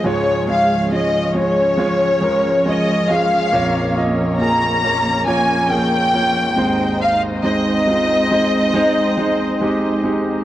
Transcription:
<<
  \new Staff \with { instrumentName = "Violin section" } { \time 4/4 \key aes \major \tempo 4 = 69 des''8 f''8 ees''8 des''4. ees''8 f''8~ | f''8 r8 bes''4 aes''8 g''4. | f''8 ees''2. r8 | }
  \new Staff \with { instrumentName = "Grand piano" } { \time 4/4 \key aes \major <aes f' des''>8 <aes f' des''>8 <aes f' ees''>8 <aes f' des''>8 <aes f' des''>8 <aes f' bes'>8 <aes f' des''>8 <aes f' aes'>8 | <bes f' des''>8 <bes f' ees''>8 <bes f' aes'>8 <bes f' des''>8 <bes f' des''>8 <bes f' aes'>8 <bes f' des''>8 <aes ees' c''>8~ | <aes ees' c''>8 <aes ees' c''>8 <aes ees' f'>8 <aes ees' c''>8 <aes ees' c''>8 <aes ees' c''>8 <aes ees' g'>8 <aes ees' g'>8 | }
  \new Staff \with { instrumentName = "Grand piano" } { \clef bass \time 4/4 \key aes \major <des, aes,>1 | <bes,, f,>2.~ <bes,, f,>8 <aes,, ees,>8~ | <aes,, ees,>2.~ <aes,, ees,>8 r8 | }
  \new Staff \with { instrumentName = "String section" } { \time 4/4 \key aes \major << { <f des''>1~ | <f des''>2.~ <f des''>8 <aes ees''>8~ | <aes ees''>1 | } \\ { <aes des' aes'>1 | <bes des' bes'>2.~ <bes des' bes'>8 <c' ees' c''>8~ | <c' ees' c''>1 | } >> }
>>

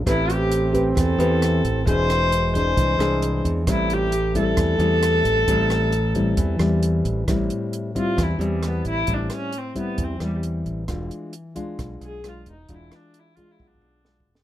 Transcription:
<<
  \new Staff \with { instrumentName = "Viola" } { \time 4/4 \key a \minor \tempo 4 = 133 e'8 g'4 r8 a'2 | bis'4. bis'2 r8 | e'8 g'4 a'2~ a'8~ | a'2. r4 |
r4. f'8 e'8 g8 b8 e'8 | d'8 cis'8 c'8 b8 c'8 g8 r4 | r2 r8 gis'8 f'8 dis'8 | e'8 d'8 \tuplet 3/2 { e'8 f'8 e'8 } d'4.~ d'16 r16 | }
  \new Staff \with { instrumentName = "Nylon-string guitar" } { \time 4/4 \key a \minor << { <c' g' b'>4. <c' g' b'>4 <c' g' b'>4. | <bis d' gis'>4 r8 <bis d' gis'>4 <bis d' gis'>4. | <g c' e'>4 r8 <g c' e'>4 <g c' e'>4. | <g c' e'>4 r8 <g c' e'>4 <g c' e'>4. |
<g c' e'>4. <g c' e'>4 <g c' e'>4. | <g c' e'>4 r8 <g c' e'>4 <g c' e'>4. | <gis d' f'>4 r8 <gis d' f'>4. <gis d' f'>8 r8 | <gis d' f'>4. <gis d' f'>4. <gis d' f'>8 r8 | } \\ { a2 e2 | e2 e2 | a,2 e2 | a,2 e2 |
a,2 e2 | a,2 e2 | e2 b,2 | e2 b,2 | } >> }
  \new Staff \with { instrumentName = "Trombone" } { \time 4/4 \key a \minor c'1 | gis1 | a1~ | a2.~ a8 r8 |
r1 | r1 | r1 | r1 | }
  \new Staff \with { instrumentName = "Fingered electric bass" } { \clef bass \time 4/4 \key a \minor a,,2 e,8 e,4 a,,8 | e,,2 bis,,8 bis,,4 e,8 | a,,2 e,8 e,4 a,,8 | a,,2 e,8 e,4 a,,8 |
a,,8 r4. e,8 e,4 a,,8 | a,,8 r4. e,8 e,4 a,,8 | e,,8 r4. b,,8 b,,4 e,,8 | e,,8 r4. b,,8 b,,4 e,,8 | }
  \new DrumStaff \with { instrumentName = "Drums" } \drummode { \time 4/4 <hh bd ss>8 hh8 hh8 <hh bd>8 <hh bd ss>8 hh8 <hh ss>8 <hh bd>8 | <hh bd>8 <hh ss>8 hh8 <hh bd>8 <hh bd>8 <hh ss>8 hh8 <hh bd>8 | <hh bd ss>8 hh8 hh8 <hh bd>8 <hh bd ss>8 hh8 <hh ss>8 <hh bd>8 | <hh bd>8 <hh ss>8 hh8 <hh bd>8 <hh bd>8 <hh ss>8 hh8 <hh bd>8 |
<hh bd ss>8 hh8 hh8 <hh bd>8 <hh bd ss>8 hh8 <hh ss>8 <hh bd>8 | <hh bd>8 <hh ss>8 hh8 <hh bd>8 <hh bd>8 <hh ss>8 hh8 <hh bd>8 | <hh bd ss>8 hh8 hh8 <hh bd>8 <hh bd ss>8 hh8 <hh ss>8 <hh bd>8 | <hh bd>8 <hh ss>8 hh8 <hh bd>8 \tuplet 3/2 { bd8 bd8 r8 sn8 bd8 sn8 } | }
>>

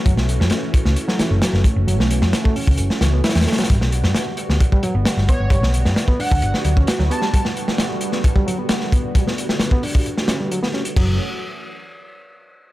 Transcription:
<<
  \new Staff \with { instrumentName = "Digital synth lead" } { \time 4/4 \key g \lydian \tempo 4 = 132 r1 | r1 | r2. r8 cis''8~ | cis''16 r4 r16 fis''8. r4 r16 a''16 a''16 |
a''16 r2. r8. | r1 | r1 | }
  \new Staff \with { instrumentName = "Analog synth pad" } { \time 4/4 \key g \lydian <e a cis' fis'>1~ | <e a cis' fis'>1 | <d g b fis'>1~ | <d g b fis'>1~ |
<d g b fis'>1~ | <d g b fis'>1 | <e a cis' fis'>8 r2. r8 | }
  \new Staff \with { instrumentName = "Reed electric piano" } { \time 4/4 \key g \lydian fis16 r4. a16 r16 fis16 e16 a16 fis8 a8 | fis16 a4 a16 cis'4 e16 b16 e'16 e16 a16 fis16 | g16 r4. b16 r16 g16 fis16 b16 g8 b8 | g16 b4 b16 d'4 fis16 cis'16 fis'16 fis16 b16 g16 |
g16 r4. b16 r16 g16 fis16 b16 g8 b8 | g16 b4 b16 d'4 cis'16 g16 fis16 b16 cis'16 r16 | fis8 r2. r8 | }
  \new Staff \with { instrumentName = "Picked electric bass" } { \clef bass \time 4/4 \key g \lydian fis,,16 b,,8 fis,16 r8. cis,16 r8. fis,,16 r16 fis,,16 r16 fis,,16 | fis,,16 b,,8 fis,16 r8. cis,16 fis,,16 r16 cis,8 r16 e,16 r8 | g,,16 b,,8 g,16 r8. d,16 r8. g,,16 r16 g,,16 r16 g,,16 | g,,16 b,,8 g,16 r8. d,16 g,,16 r16 d,8 r16 d,16 r8 |
r1 | r1 | fis,,8 r2. r8 | }
  \new DrumStaff \with { instrumentName = "Drums" } \drummode { \time 4/4 <hh bd>16 sn16 hh16 sn16 <hh sn>8 <hh bd>16 sn16 hh16 sn16 <hh sn>8 <hh sn>16 sn16 <hh bd>8 | hh16 sn16 hh16 sn16 <hh sn>16 bd16 hho16 bd16 hh16 sn16 <hh sn>8 <hh sn>32 <hh sn>32 <hh sn>32 <hh sn>32 <hh sn>32 <hh sn>32 <hh sn>32 <hh sn>32 | <hh bd>16 sn16 hh16 sn16 <hh sn>8 hh16 sn16 <hh bd>16 bd16 hh8 <hh sn>16 sn16 <hh bd>8 | <hh bd>16 sn16 hh16 sn16 <hh sn>16 bd16 hho16 bd16 hh16 sn16 hh16 bd16 <hh sn>16 sn16 hh16 sn16 |
<hh bd>16 sn16 hh16 sn16 <hh sn>8 hh16 sn16 <hh bd>16 bd16 hh8 <hh sn>16 sn16 <hh bd>8 | <hh bd>16 sn16 hh16 sn16 <hh sn>16 bd16 hho16 bd16 hh16 sn16 <hh sn>8 hh16 sn16 sn16 hh16 | <cymc bd>4 r4 r4 r4 | }
>>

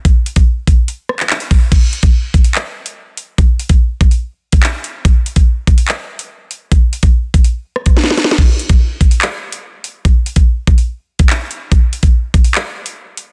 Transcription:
\new DrumStaff \with { instrumentName = "Drums" } \drummode { \time 4/4 \tempo 4 = 144 <hh bd>8 hh16 <hh bd>16 r8 <hh bd>8 hh8 ss16 hc16 hc16 hh16 <hho bd>8 | <cymc hh bd>8 hh16 <hh bd>16 r8 <hh bd>16 hh16 hc8. hh16 r8 hh8 | <hh bd>8 hh16 <hh bd>16 r8 <hh bd>16 hh16 r8. <hh bd>16 hc8 hh8 | <hh bd>8 hh16 <hh bd>16 r8 <hh bd>16 hh16 hc8. hh16 r8 hh8 |
<hh bd>8 hh16 <hh bd>16 r8 <hh bd>16 hh16 r8 ss16 <hh bd>16 \tuplet 3/2 { sn16 sn16 sn16 <hh sn>16 sn16 sn16 } | <cymc bd>8 hh16 <hh bd>16 r8 <hh bd>16 hh16 hc8. hh16 r8 hh8 | <hh bd>8 hh16 <hh bd>16 r8 <hh bd>16 hh16 r8. <hh bd>16 hc8 hh8 | <hh bd>8 hh16 <hh bd>16 r8 <hh bd>16 hh16 hc8. hh16 r8 hh8 | }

